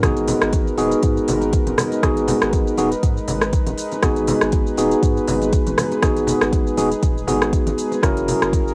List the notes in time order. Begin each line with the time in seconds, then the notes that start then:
0.03 G#1 G#3 B3 D#4 F#4 G#4 A#4 B4, kick, cross-stick, closed hi-hat, high conga, low conga, shaker
0.17 closed hi-hat, shaker
0.28 open hi-hat, muted conga, low conga, shaker
0.42 G#1, cross-stick, closed hi-hat, shaker
0.53 kick, closed hi-hat, muted conga, high conga, shaker
0.67 shaker
0.78 D#1 B3 D#4 F#4 G#4, open hi-hat, muted conga, high conga, shaker
0.92 closed hi-hat, shaker
1.03 G#2, kick, closed hi-hat, muted conga, shaker
1.17 shaker
1.28 G#1, open hi-hat, low conga, shaker
1.41 closed hi-hat, muted conga, shaker
1.53 kick, closed hi-hat, shaker
1.67 D#1, closed hi-hat, muted conga, high conga, shaker
1.78 cross-stick, open hi-hat, high conga, low conga, shaker
1.92 closed hi-hat, muted conga, shaker
2.03 G#1 B3 D#4 F#4 G#4, kick, cross-stick, closed hi-hat, high conga, low conga, shaker
2.17 closed hi-hat, shaker
2.28 open hi-hat, muted conga, low conga, shaker
2.42 G#1, cross-stick, closed hi-hat, shaker
2.53 kick, closed hi-hat, muted conga, high conga, shaker
2.67 shaker
2.77 D#1 B3 D#4 F#4 G#4, open hi-hat, muted conga, high conga, shaker
2.92 closed hi-hat, shaker
3.03 G#2, kick, closed hi-hat, muted conga, shaker
3.17 shaker
3.28 G#1, open hi-hat, low conga, shaker
3.41 cross-stick, closed hi-hat, muted conga, shaker
3.53 kick, closed hi-hat, shaker
3.66 D#1, closed hi-hat, muted conga, high conga, shaker
3.77 open hi-hat, shaker
3.92 closed hi-hat, muted conga, shaker
4.03 G#1 B3 D#4 F#4 G#4, kick, cross-stick, closed hi-hat, high conga, low conga, shaker
4.16 closed hi-hat, shaker
4.27 open hi-hat, muted conga, low conga, shaker
4.41 G#1, cross-stick, closed hi-hat, shaker
4.52 kick, closed hi-hat, muted conga, high conga, shaker
4.67 shaker
4.77 D#1 B3 D#4 F#4 G#4, open hi-hat, muted conga, high conga, shaker
4.91 closed hi-hat, shaker
5.03 G#2, kick, closed hi-hat, muted conga, shaker
5.17 shaker
5.27 G#1, open hi-hat, low conga, shaker
5.41 closed hi-hat, muted conga, shaker
5.53 kick, closed hi-hat, shaker
5.66 D#1, closed hi-hat, muted conga, high conga, shaker
5.78 cross-stick, open hi-hat, high conga, low conga, shaker
5.92 closed hi-hat, muted conga, shaker
6.02 G#1 B3 D#4 F#4 G#4, kick, cross-stick, closed hi-hat, high conga, low conga, shaker
6.17 closed hi-hat, shaker
6.27 open hi-hat, muted conga, low conga, shaker
6.41 G#1, cross-stick, closed hi-hat, shaker
6.52 kick, closed hi-hat, muted conga, high conga, shaker
6.67 shaker
6.77 D#1 B3 D#4 F#4 G#4, open hi-hat, muted conga, high conga, shaker
6.92 closed hi-hat, shaker
7.03 D#1, kick, closed hi-hat, muted conga, shaker
7.18 shaker
7.27 G#1 B3 D#4 F#4 G#4, open hi-hat, low conga, shaker
7.41 cross-stick, closed hi-hat, muted conga, shaker
7.53 kick, closed hi-hat, shaker
7.67 G#1, closed hi-hat, muted conga, high conga, shaker
7.78 open hi-hat, shaker
7.92 closed hi-hat, muted conga, shaker
8.02 F#1 F#3 C#4 E4 F#4 A#4, kick, cross-stick, closed hi-hat, high conga, low conga, shaker
8.17 closed hi-hat, shaker
8.28 open hi-hat, muted conga, low conga, shaker
8.42 F#1, cross-stick, closed hi-hat, shaker
8.53 kick, closed hi-hat, muted conga, high conga, shaker
8.67 shaker